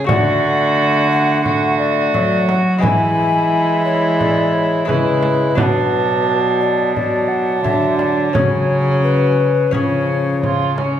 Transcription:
0.04 cello D3, lute A3 F#4, trombone A3, violin F#4
0.09 lute D3, recorder D5, frame drum
1.12 recorder F#5
1.44 trombone A3, violin F#4, recorder F#5, frame drum
1.79 recorder D5
2.14 lute F#3, cello F#3, frame drum
2.48 recorder F#5, frame drum
2.78 cello E3, lute G#3 E4 B4, trombone G#3, violin E4, recorder G#5
2.82 lute E3, frame drum
3.85 recorder C#5
4.20 recorder D5, frame drum
4.53 recorder C#5
4.85 lute C#3 G#3 E4 B4, trombone G#3, recorder B4, frame drum
4.89 cello C#3, violin E4
5.23 frame drum
5.55 cello B2, lute B2 D4 B4, trombone F#3, violin D4, recorder B4, frame drum
6.61 recorder D5
6.95 trombone F#3, violin D4, recorder D5, frame drum
7.28 recorder F#5
7.64 lute D3, cello D3, recorder E5, frame drum
7.98 recorder D5, frame drum
8.33 cello C#3, lute C#3 C#4 G#4, trombone F#3, violin C#4, recorder C#5, frame drum
9.04 recorder B4
9.71 cello C#3, lute C#3 C#4 G#4, trombone F3, violin C#4, recorder C#5, frame drum
10.43 violin F4, frame drum
10.78 violin C#4, frame drum

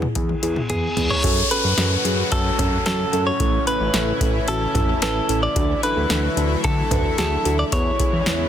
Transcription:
0.02 mid tom
0.15 analog synth bass E2, synth keys B3 E4 G#4, kick, closed hi-hat, high tom, reverse cymbal
0.29 high tom
0.43 analog synth bass E2, synth keys B3 E4 G#4, closed hi-hat
0.56 mid tom
0.70 analog synth bass E2, synth keys B3 E4 G#4, clean electric guitar G#4, closed hi-hat, mid tom
0.97 analog synth bass E2, synth keys B3 E4 G#4, closed hi-hat, floor tom
1.10 clean electric guitar C#5, floor tom
1.24 analog synth bass F#2, analog synth pad A2 C#3 F#3 C#4 F#4, synth keys C#4 F#4 A4, kick, closed hi-hat, crash, downlifter
1.51 synth keys C#4 F#4 A4, clean electric guitar B4, closed hi-hat
1.64 analog synth bass F#2
1.78 analog synth bass F#2, synth keys C#4 F#4 A4, snare, closed hi-hat
2.05 analog synth bass F#2, synth keys C#4 F#4 G#4, closed hi-hat
2.32 analog synth bass F#2, synth keys C#4 F#4 B4, clean electric guitar A4, kick, closed hi-hat
2.59 analog synth bass F#2, synth keys C#4 F#4 A4, kick, closed hi-hat, mid tom
2.86 analog synth bass F#2, synth keys C#4 F#4 A4, clean electric guitar A4, snare, closed hi-hat
3.13 analog synth bass F#2, synth keys C#4 F#4 A4, closed hi-hat
3.27 clean electric guitar C#5
3.40 analog synth bass A1, analog synth pad E3 E4, synth keys C#4 E4 A4, kick, closed hi-hat
3.67 synth keys C#4 E4 B4, clean electric guitar B4, closed hi-hat
3.81 analog synth bass A1
3.94 analog synth bass A1, synth keys C#4 E4 A4, snare, closed hi-hat
4.21 analog synth bass A1, synth keys C#4 E4 A4, kick, closed hi-hat
4.48 analog synth bass A1, synth keys C#4 E4 F#4, clean electric guitar A4, closed hi-hat
4.75 analog synth bass A1, synth keys C#4 E4 A4, kick, closed hi-hat, mid tom
5.02 analog synth bass A1, synth keys C#4 E4 B4, clean electric guitar A4, snare, closed hi-hat
5.29 analog synth bass A1, synth keys C#4 E4 A4, closed hi-hat
5.43 clean electric guitar D5
5.56 analog synth bass D2, analog synth pad D3 F#3 A3 E4, synth keys D4 F#4 A4, kick, closed hi-hat
5.83 synth keys D4 F#4 A4, clean electric guitar B4, closed hi-hat
5.97 analog synth bass D2
6.10 analog synth bass D2, synth keys D4 F#4 A4, snare, closed hi-hat
6.37 analog synth bass D2, synth keys D4 F#4 A4, closed hi-hat
6.64 analog synth bass D2, synth keys D4 F#4 A4, clean electric guitar A4, kick, closed hi-hat
6.91 analog synth bass D2, synth keys D4 F#4 B4, kick, closed hi-hat, mid tom
7.18 analog synth bass D2, synth keys D4 F#4 G#4, clean electric guitar A4, snare, closed hi-hat
7.45 analog synth bass D2, synth keys D4 F#4 A4, closed hi-hat
7.59 clean electric guitar D5
7.72 analog synth bass E2, analog synth pad C#3 E3 G#3 B3, synth keys B3 E4 G#4, clean electric guitar C#5, kick, closed hi-hat
7.99 synth keys B3 E4 G#4, kick, closed hi-hat
8.13 analog synth bass E2
8.26 analog synth bass E2, synth keys B3 E4 G#4, snare, closed hi-hat

